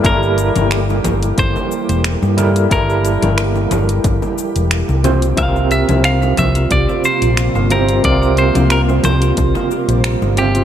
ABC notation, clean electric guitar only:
X:1
M:4/4
L:1/8
Q:"Swing 16ths" 1/4=90
K:Gdor
V:1 name="Clean electric guitar"
B4 c4 | B2 z6 | f e f e d c2 B | d c B c4 G |]